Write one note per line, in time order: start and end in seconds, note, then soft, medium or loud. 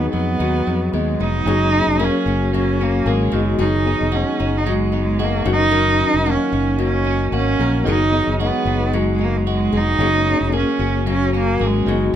0.00 0.12 F#3 medium
0.00 0.40 F#3 medium
0.00 0.93 G#3 medium
0.00 0.12 B3 loud
0.00 0.12 B3 medium
0.00 0.93 B3 medium
0.00 1.48 B3 medium
0.00 0.38 D#4 medium
0.00 0.66 D#4 medium
0.00 1.48 D#4 medium
0.00 1.47 G#4 medium
0.00 1.48 D#5 loud
0.13 0.35 F2 medium
0.13 0.66 F#3 medium
0.13 0.89 B3 loud
0.13 1.19 B3 medium
0.39 0.62 D#2 medium
0.39 1.47 F#3 medium
0.39 1.20 D#4 medium
0.67 0.89 F2 medium
0.67 1.45 F#3 medium
0.67 1.52 D#4 medium
0.93 1.15 D#2 medium
0.93 1.99 G#3 medium
0.93 1.24 G#3 medium
0.93 1.52 B3 medium
1.20 1.42 F1 loud
1.20 1.52 B3 medium
1.20 1.53 D#4 medium
1.20 2.05 D#4 loud
1.45 1.80 F#1 loud
1.45 3.33 F#3 medium
1.45 2.54 F#3 medium
1.45 1.67 A#3 medium
1.45 1.67 C#4 medium
1.45 1.67 F#4 medium
1.45 1.68 G#4 medium
1.45 3.59 G#4 medium
1.45 1.68 C#5 medium
1.72 2.56 A#3 medium
1.72 2.25 C#4 medium
1.72 2.56 C#4 medium
1.72 2.56 F#4 medium
1.72 2.56 G#4 medium
1.72 2.57 C#5 medium
1.87 2.09 F1 medium
1.99 3.05 A#3 medium
1.99 3.07 G#4 medium
2.03 2.55 C#4 medium
2.26 3.02 F#1 medium
2.26 2.79 C#4 medium
2.26 3.62 F#4 medium
2.53 3.31 F#3 medium
2.53 3.39 A#3 medium
2.53 2.84 C#4 medium
2.81 3.10 A#3 medium
2.81 3.39 C#4 medium
2.81 3.40 C#4 medium
3.06 3.28 G#1 loud
3.06 3.63 G#3 medium
3.06 3.39 A#3 medium
3.06 4.12 G#4 medium
3.32 3.54 F#1 medium
3.32 3.60 D#3 medium
3.32 3.58 F#3 medium
3.32 3.77 B3 medium
3.32 3.77 D#4 medium
3.32 3.77 F#4 medium
3.32 3.77 G#4 medium
3.32 3.78 D#5 medium
3.58 3.93 F#1 loud
3.58 5.45 D#3 medium
3.58 4.66 F#3 medium
3.58 4.17 D#4 medium
3.58 5.52 G#4 medium
3.85 4.69 B3 medium
3.85 4.68 D#4 medium
3.85 4.39 D#4 medium
3.85 4.69 F#4 medium
3.85 4.69 G#4 medium
3.85 4.69 D#5 medium
4.01 4.23 F1 medium
4.12 5.18 G#3 medium
4.12 4.59 C#4 medium
4.12 5.19 F#4 medium
4.40 5.43 F#1 medium
4.40 4.93 D#4 medium
4.40 6.52 D#4 medium
4.57 4.73 D#4 medium
4.66 5.45 F#3 medium
4.66 5.52 G#3 medium
4.71 4.96 G#3 medium
4.92 5.52 B3 medium
4.92 5.99 D#4 medium
4.97 5.26 G#3 medium
5.19 5.52 G#3 medium
5.19 6.26 F#4 medium
5.24 5.49 A#3 medium
5.46 6.02 F#1 loud
5.46 5.72 D#3 medium
5.46 5.71 F#3 medium
5.46 5.90 C#4 medium
5.46 5.90 D#4 medium
5.46 5.90 F#4 medium
5.46 5.90 A#4 medium
5.46 5.91 D#5 medium
5.52 6.32 D#4 loud
5.71 7.85 D#3 medium
5.71 6.78 F#3 medium
5.71 7.59 A#4 medium
5.99 6.82 C#4 medium
5.99 6.52 C#4 medium
5.99 6.82 D#4 medium
5.99 6.82 F#4 medium
5.99 6.82 A#4 medium
5.99 6.83 D#5 medium
6.14 6.36 F1 medium
6.26 7.31 A#3 medium
6.26 7.33 F#4 medium
6.31 6.82 C#4 loud
6.52 7.29 F#1 medium
6.52 7.06 C#4 medium
6.52 8.66 D#4 medium
6.79 7.87 F#3 medium
6.79 7.59 A#3 medium
6.84 7.32 C#4 loud
7.05 7.91 C#4 medium
7.05 7.93 C#4 medium
7.32 7.54 G#1 medium
7.32 7.92 A#3 medium
7.32 7.84 C#4 loud
7.32 8.39 F#4 medium
7.59 7.81 A#1 medium
7.59 7.92 A#3 medium
7.59 7.87 A#4 medium
7.83 8.20 F#1 loud
7.83 10.00 D#3 medium
7.83 8.93 F#3 medium
7.83 8.06 B3 medium
7.83 8.06 D#4 medium
7.83 8.07 F#4 medium
7.83 8.07 G#4 medium
7.83 8.07 D#5 medium
7.88 8.38 D#4 loud
7.88 9.72 G#4 medium
8.12 8.95 B3 medium
8.12 8.95 D#4 medium
8.12 8.66 D#4 medium
8.12 8.95 F#4 medium
8.12 8.96 G#4 medium
8.12 8.96 D#5 medium
8.27 8.50 F#1 medium
8.40 9.46 G#3 medium
8.40 8.99 B3 medium
8.40 9.47 F#4 medium
8.65 9.69 F#1 loud
8.65 10.06 D#4 medium
8.65 9.20 D#4 medium
8.93 10.00 F#3 medium
8.93 9.73 G#3 medium
8.93 9.10 G#3 medium
9.11 9.25 G#3 medium
9.19 10.05 B3 medium
9.19 10.06 D#4 medium
9.24 9.38 A#3 medium
9.37 9.48 G#3 medium
9.47 10.52 G#3 medium
9.47 10.53 F#4 medium
9.51 9.79 G#3 loud
9.72 9.95 F1 medium
9.72 11.06 G#3 medium
9.72 10.01 G#4 medium
9.77 10.55 D#4 loud
9.98 10.33 F#1 loud
9.98 11.87 F#3 medium
9.98 11.06 F#3 medium
9.98 10.20 A#3 medium
9.98 10.20 C#4 medium
9.98 10.21 F#4 medium
9.98 10.21 G#4 medium
9.98 12.14 G#4 medium
9.98 10.21 C#5 medium
10.24 11.08 A#3 medium
10.24 11.08 C#4 medium
10.24 10.79 C#4 medium
10.24 11.09 F#4 medium
10.24 11.09 C#5 medium
10.41 10.63 F1 medium
10.52 11.58 A#3 medium
10.52 11.61 G#4 medium
10.57 11.05 C#4 medium
10.79 11.56 F#1 medium
10.79 11.32 C#4 medium
10.79 12.15 F#4 medium
11.06 11.88 F#3 medium
11.06 11.93 A#3 medium
11.11 11.34 C#4 medium
11.33 11.67 A#3 loud
11.33 11.93 C#4 medium
11.59 11.82 G#1 medium
11.59 11.92 A#3 medium
11.59 12.15 G#4 medium
11.66 12.15 G#3 medium
11.85 12.08 F#1 medium
11.85 12.14 D#3 medium
11.85 12.13 F#3 medium
11.85 12.15 B3 medium
11.85 12.15 D#4 medium
11.85 12.15 F#4 medium
11.85 12.15 G#4 medium
11.85 12.15 D#5 medium